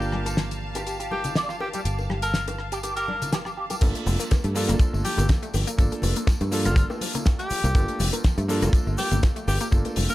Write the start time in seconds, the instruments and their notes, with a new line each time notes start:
Already playing: fingered electric bass G1, electric grand piano A#3 D4 F4 A#4, tenor saxophone G4, string section F5 A5
0.02 tambourine
0.12 clean electric guitar G4, cross-stick, high conga
0.26 clean electric guitar A4, closed hi-hat, tambourine, high bongo
0.37 snare, closed hi-hat, tambourine
0.51 closed hi-hat, tambourine
0.75 clean electric guitar G4, closed hi-hat, tambourine, high bongo
0.87 clean electric guitar G4, closed hi-hat, tambourine
1.00 clean electric guitar G4, closed hi-hat, tambourine
1.11 clean electric guitar G4, tenor saxophone G4, high bongo, high conga
1.24 closed hi-hat, tambourine, low conga
1.35 clean electric guitar D5, snare, closed hi-hat, tambourine
1.49 clean electric guitar F4, cross-stick, tambourine
1.61 tenor saxophone G4, clean electric guitar G4, high bongo
1.73 clean electric guitar G3, tenor saxophone G4, closed hi-hat, tambourine, high conga
1.85 fingered electric bass G1, clean electric guitar G4, closed hi-hat, tambourine
1.98 tambourine, high bongo
2.10 clean electric guitar G4, cross-stick, high conga
2.22 clean electric guitar A4, tenor saxophone A#4, closed hi-hat, tambourine
2.34 snare, closed hi-hat, tambourine
2.48 closed hi-hat, tambourine, high bongo
2.58 cross-stick
2.72 clean electric guitar G4, closed hi-hat, tambourine
2.83 clean electric guitar G4, closed hi-hat, tambourine, high bongo
2.97 clean electric guitar G4, tenor saxophone A#4, closed hi-hat, tambourine
3.08 clean electric guitar D4, high conga
3.22 closed hi-hat, tambourine, low conga
3.32 clean electric guitar G4, snare, closed hi-hat, tambourine, high bongo
3.45 clean electric guitar G4, cross-stick, tambourine
3.57 clean electric guitar G4
3.70 clean electric guitar G4, closed hi-hat, tambourine, high bongo, high conga
3.81 fingered electric bass G1, synth arpeggio sound F3, electric grand piano A#3 D4 F4 A4, kick, closed hi-hat, tambourine, crash, high bongo, shaker
3.95 synth arpeggio sound A3, closed hi-hat, tambourine
4.06 fingered electric bass F1, synth arpeggio sound F3, open hi-hat, high conga, shaker
4.20 synth arpeggio sound A#3, closed hi-hat, tambourine, shaker
4.31 synth arpeggio sound F3, kick, snare, closed hi-hat, tambourine, high bongo, shaker
4.44 fingered electric bass G2, synth arpeggio sound A3, closed hi-hat, tambourine
4.55 synth arpeggio sound F3, electric grand piano A#3 D4 F4 A4, open hi-hat, shaker
4.69 fingered electric bass G1, synth arpeggio sound A#3, cross-stick, closed hi-hat, tambourine, high bongo, high conga, shaker
4.79 synth arpeggio sound F3, kick, closed hi-hat, tambourine, shaker
4.93 fingered electric bass G1, synth arpeggio sound A3, tambourine
5.05 synth arpeggio sound F3, tenor saxophone G4, open hi-hat, high conga, shaker
5.17 fingered electric bass G1, synth arpeggio sound A#3, closed hi-hat, tambourine, high bongo, low conga, shaker
5.29 synth arpeggio sound F3, kick, snare, closed hi-hat, tambourine, shaker
5.42 synth arpeggio sound A3, closed hi-hat, tambourine
5.54 fingered electric bass G1, synth arpeggio sound F3, open hi-hat, high bongo, shaker
5.67 synth arpeggio sound A#3, closed hi-hat, tambourine, shaker
5.78 fingered electric bass G1, synth arpeggio sound F3, electric grand piano A#3 D4 F4 A4, kick, closed hi-hat, tambourine, shaker
5.91 synth arpeggio sound A3, closed hi-hat, tambourine
6.02 fingered electric bass F1, synth arpeggio sound F3, open hi-hat, high bongo, high conga, shaker
6.16 synth arpeggio sound A#3, closed hi-hat, tambourine, shaker
6.27 synth arpeggio sound F3, kick, snare, closed hi-hat, tambourine, shaker
6.41 fingered electric bass G2, synth arpeggio sound A3, closed hi-hat, tambourine, high bongo
6.51 synth arpeggio sound F3, electric grand piano A#3 D4 F4 A4, open hi-hat, shaker
6.65 fingered electric bass G1, synth arpeggio sound A#3, tenor saxophone F4, cross-stick, closed hi-hat, tambourine, high conga, shaker
6.76 synth arpeggio sound F3, tenor saxophone F4, kick, closed hi-hat, tambourine, shaker
6.90 synth arpeggio sound A3, tambourine, high bongo
7.01 synth arpeggio sound F3, open hi-hat, high conga, shaker
7.15 synth arpeggio sound A#3, closed hi-hat, tambourine, low conga, shaker
7.26 synth arpeggio sound F3, kick, snare, closed hi-hat, tambourine, high bongo, shaker
7.39 synth arpeggio sound A3, tenor saxophone G4, closed hi-hat, tambourine
7.50 synth arpeggio sound F3, muted fingered electric bass stroke, open hi-hat, shaker
7.64 fingered electric bass C2, synth arpeggio sound A#3, closed hi-hat, tambourine, shaker
7.74 fingered electric bass G1, synth arpeggio sound F3, electric grand piano A#3 D4 F4 A4, kick, closed hi-hat, tambourine, high bongo, shaker
7.88 synth arpeggio sound A3, closed hi-hat, tambourine
8.00 fingered electric bass F1, synth arpeggio sound F3, open hi-hat, high conga, shaker
8.13 synth arpeggio sound A#3, closed hi-hat, tambourine, high bongo, shaker
8.24 synth arpeggio sound F3, kick, snare, closed hi-hat, tambourine, shaker
8.38 fingered electric bass G2, synth arpeggio sound A3, closed hi-hat, tambourine
8.48 synth arpeggio sound F3, electric grand piano A#3 D4 F4 A4, open hi-hat, shaker
8.62 fingered electric bass G1, synth arpeggio sound A#3, cross-stick, closed hi-hat, tambourine, high bongo, high conga, shaker
8.73 synth arpeggio sound F3, kick, closed hi-hat, tambourine, shaker
8.87 fingered electric bass G1, synth arpeggio sound A3, tambourine
8.98 synth arpeggio sound F3, tenor saxophone G4, open hi-hat, high bongo, high conga, shaker
9.11 fingered electric bass G1, synth arpeggio sound A#3, closed hi-hat, tambourine, low conga, shaker
9.23 synth arpeggio sound F3, kick, snare, closed hi-hat, tambourine, shaker
9.36 synth arpeggio sound A3, closed hi-hat, tambourine
9.48 fingered electric bass G1, synth arpeggio sound F3, tenor saxophone G4, open hi-hat, high bongo, shaker
9.60 synth arpeggio sound A#3, tenor saxophone G4, closed hi-hat, tambourine, shaker
9.71 fingered electric bass G1, synth arpeggio sound F3, electric grand piano A#3 D4 F4 A4, kick, closed hi-hat, tambourine, shaker
9.85 synth arpeggio sound A3, closed hi-hat, tambourine, high bongo
9.96 fingered electric bass F1, synth arpeggio sound F3, open hi-hat, high conga, shaker
10.09 synth arpeggio sound A#3, tenor saxophone A#4, closed hi-hat, tambourine, shaker